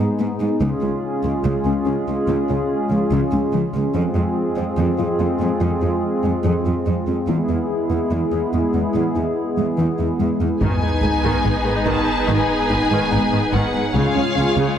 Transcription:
0.00 0.58 G#3 medium
0.00 0.58 B3 medium
0.00 0.62 D#4 medium
0.00 0.12 G#4 medium
0.00 0.58 G#4 medium
0.20 0.28 G#2 soft
0.20 0.33 B3 medium
0.41 0.49 G#2 soft
0.41 0.54 D#4 soft
0.61 0.70 C#2 medium
0.61 0.75 C#3 medium
0.61 3.91 G#3 medium
0.61 3.95 C#4 medium
0.61 3.95 F4 medium
0.61 3.91 G#4 medium
0.82 0.90 C#2 soft
0.82 0.95 C#4 medium
1.24 1.32 C#2 soft
1.24 1.37 G#3 medium
1.45 1.53 C#2 medium
1.45 1.58 C#3 medium
1.66 1.74 C#2 soft
1.66 1.78 C#4 medium
1.86 1.94 C#2 soft
1.86 1.99 C#4 soft
2.08 2.16 C#2 soft
2.08 2.20 G#3 soft
2.28 2.36 C#2 medium
2.28 2.41 C#3 medium
2.50 2.58 C#2 soft
2.50 2.62 C#4 soft
2.91 2.99 C#2 soft
2.91 3.04 F3 soft
3.12 3.20 C#2 medium
3.12 3.24 C#3 medium
3.33 3.41 C#2 soft
3.33 3.45 C#4 soft
3.53 3.61 C#2 soft
3.53 3.66 F3 soft
3.74 3.83 C#2 soft
3.74 3.87 G#3 soft
3.95 4.03 F2 medium
3.95 4.07 F3 medium
3.95 7.26 G#3 medium
3.95 7.29 C4 medium
3.95 7.25 F4 medium
3.95 7.26 G#4 medium
4.15 4.24 F2 soft
4.15 4.28 F4 soft
4.57 4.65 F2 soft
4.57 4.70 C4 soft
4.78 4.86 F2 medium
4.78 4.91 F3 medium
4.98 5.07 F2 soft
4.98 5.11 F4 soft
5.20 5.28 F2 soft
5.20 5.32 F4 medium
5.39 5.49 F2 soft
5.39 5.52 C4 soft
5.61 5.70 F2 soft
5.61 5.74 F3 medium
5.82 5.90 F2 soft
5.82 5.95 F4 soft
6.23 6.32 F2 soft
6.23 6.36 G#3 soft
6.45 6.53 F2 soft
6.45 6.57 F3 medium
6.65 6.74 F2 soft
6.65 6.78 F4 soft
6.87 6.95 F2 soft
6.87 6.99 G#3 soft
7.08 7.16 F2 soft
7.08 7.20 C4 soft
7.28 7.36 E2 soft
7.28 7.41 E3 medium
7.28 10.58 G#3 soft
7.28 10.62 B3 medium
7.28 10.62 E4 medium
7.28 10.58 G#4 soft
7.49 7.57 E2 soft
7.49 7.62 E4 soft
7.91 7.99 E2 soft
7.91 8.03 B3 soft
8.11 8.19 E2 soft
8.11 8.24 E3 medium
8.33 8.41 E2 soft
8.33 8.45 E4 soft
8.53 8.61 E2 soft
8.53 8.66 E4 soft
8.74 8.82 E2 soft
8.74 8.87 B3 soft
8.95 9.03 E2 soft
8.95 9.08 E3 medium
9.16 9.24 E2 soft
9.16 9.28 E4 soft
9.57 9.66 E2 soft
9.57 9.70 G#3 soft
9.78 9.86 E2 soft
9.78 9.91 E3 medium
9.99 10.08 E2 soft
9.99 10.11 E4 soft
10.20 10.29 E2 soft
10.20 10.32 G#3 soft
10.40 10.49 E2 soft
10.40 10.53 B3 soft
10.61 10.71 G#1 medium
10.61 10.70 G#2 medium
10.61 10.81 D#3 soft
10.61 10.74 G#3 medium
10.61 13.92 G#3 medium
10.61 13.92 B3 medium
10.61 13.91 D#4 soft
10.61 13.92 D#4 medium
10.61 13.92 G#4 soft
10.61 13.92 B4 soft
10.61 13.92 B4 medium
10.61 11.83 G#5 medium
10.61 taiko medium
10.61 sub drop medium
10.82 10.90 G#2 soft
10.82 10.91 G#3 soft
10.82 10.95 G#4 medium
11.03 11.11 G#1 soft
11.03 11.11 G#2 soft
11.03 11.11 D#3 soft
11.03 11.16 G#4 medium
11.24 11.32 G#2 soft
11.24 11.43 D#3 soft
11.24 11.37 G#3 medium
11.44 11.54 G#1 soft
11.44 11.52 G#2 soft
11.44 11.52 G#3 soft
11.44 11.58 D#4 medium
11.65 11.73 G#2 soft
11.65 11.73 D#3 soft
11.65 11.78 B3 medium
11.86 11.95 G#1 soft
11.86 11.94 G#2 soft
11.86 12.06 D#3 soft
11.86 11.99 G#3 medium
11.86 12.28 A5 medium
11.86 taiko soft
12.27 12.37 G#1 soft
12.27 12.36 G#2 medium
12.27 12.47 D#3 soft
12.27 12.41 G#3 medium
12.27 13.54 G#5 medium
12.69 12.79 G#1 soft
12.69 12.77 G#2 soft
12.69 12.79 D#3 soft
12.69 12.82 D#4 soft
12.91 12.99 G#2 soft
12.91 13.11 D#3 soft
12.91 13.03 G#3 medium
13.12 13.21 G#1 soft
13.12 13.20 G#2 soft
13.12 13.20 G#3 soft
13.12 13.24 D#4 medium
13.32 13.40 G#2 soft
13.32 13.41 D#3 soft
13.32 13.45 B3 medium
13.52 13.61 G#1 medium
13.52 13.61 G#2 medium
13.52 13.73 D#3 soft
13.52 13.65 G#3 medium
13.52 13.95 F#5 medium
13.74 13.82 G#2 soft
13.74 13.82 G#3 soft
13.74 13.87 B3 soft
13.94 14.03 C#2 soft
13.94 14.07 C#3 medium
13.94 14.15 C#3 soft
13.94 14.79 G#3 medium
13.94 14.79 C#4 medium
13.94 14.79 F4 soft
13.94 14.79 F4 medium
13.94 14.79 G#4 soft
13.94 14.79 G#4 medium
13.94 14.79 C#5 soft
13.94 14.79 F5 medium
14.15 14.24 C#2 soft
14.15 14.25 G#3 soft
14.15 14.28 C#4 medium
14.36 14.44 C#2 soft
14.36 14.45 C#2 soft
14.36 14.46 F3 soft
14.36 14.49 C#4 medium
14.57 14.65 C#2 medium
14.57 14.69 C#3 medium
14.57 14.77 C#3 soft

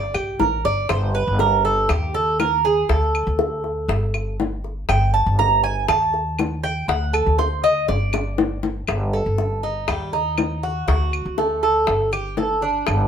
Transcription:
0.00 0.14 G1 medium
0.00 0.14 D5 medium
0.14 0.37 A#1 medium
0.14 0.39 G4 medium
0.14 high bongo soft
0.14 claves medium
0.39 0.62 A1 medium
0.39 0.64 A#4 medium
0.39 high bongo soft
0.39 low bongo medium
0.65 0.87 G1 medium
0.65 0.89 D5 loud
0.65 high bongo soft
0.89 1.26 G1 medium
0.89 1.14 C5 medium
0.89 high bongo medium
0.89 claves medium
1.15 1.39 B4 medium
1.27 1.87 G1 medium
1.39 1.64 A#4 medium
1.39 high bongo medium
1.64 1.89 A4 medium
1.64 high bongo soft
1.89 2.85 D#2 medium
1.89 2.14 G4 medium
1.89 high bongo medium
1.89 claves medium
2.14 2.39 A4 medium
2.14 high bongo soft
2.39 2.64 A#4 medium
2.39 high bongo soft
2.39 low bongo medium
2.39 claves medium
2.64 2.89 G#4 medium
2.64 high bongo soft
2.89 3.25 D2 medium
2.89 4.35 A4 medium
2.89 high bongo medium
3.15 claves medium
3.27 3.86 D2 medium
3.39 high bongo medium
3.64 high bongo soft
3.88 4.84 G1 medium
3.88 high bongo medium
4.14 high bongo soft
4.14 claves medium
4.40 high bongo soft
4.40 low bongo medium
4.64 high bongo soft
4.89 5.24 G1 medium
4.89 5.13 G5 medium
4.89 high bongo medium
4.89 claves medium
5.14 5.38 A5 medium
5.26 5.86 G1 medium
5.39 5.63 A#5 loud
5.39 high bongo medium
5.64 5.88 G#5 medium
5.64 high bongo soft
5.88 6.84 D#2 medium
5.88 6.59 A5 loud
5.88 high bongo medium
5.88 claves medium
6.14 high bongo soft
6.39 high bongo soft
6.39 low bongo medium
6.39 claves medium
6.63 6.88 G5 loud
6.63 high bongo soft
6.88 7.24 D2 loud
6.88 7.13 F#5 medium
6.88 high bongo medium
7.13 7.38 A4 medium
7.13 claves medium
7.26 7.85 D2 medium
7.38 7.63 C5 medium
7.38 high bongo medium
7.64 7.88 D#5 loud
7.64 high bongo soft
7.88 8.84 G1 medium
7.88 8.59 D5 medium
7.88 high bongo medium
8.13 high bongo loud
8.13 claves medium
8.38 low bongo loud
8.63 low bongo medium
8.87 9.24 G1 medium
8.87 high bongo medium
8.87 claves medium
9.13 9.62 A4 medium
9.26 9.85 G1 medium
9.38 high bongo medium
9.63 9.87 D#4 medium
9.63 high bongo soft
9.88 10.84 D#2 medium
9.88 10.12 G3 medium
9.88 high bongo medium
9.88 claves medium
10.13 10.62 D#4 medium
10.13 high bongo soft
10.38 high bongo soft
10.38 low bongo medium
10.38 claves medium
10.63 10.87 F#4 medium
10.63 high bongo soft
10.88 11.24 D2 medium
10.88 11.36 F#4 medium
10.88 high bongo medium
11.13 claves medium
11.25 11.85 D2 medium
11.38 11.62 A3 medium
11.38 high bongo medium
11.63 12.11 A4 medium
11.63 high bongo soft
11.87 12.84 G1 medium
11.87 high bongo medium
12.12 12.37 G4 medium
12.12 high bongo soft
12.12 claves medium
12.37 12.62 A4 medium
12.37 high bongo soft
12.37 low bongo medium
12.61 13.08 D4 medium
12.61 high bongo soft
12.87 13.08 G1 medium
12.87 high bongo medium
12.87 claves medium

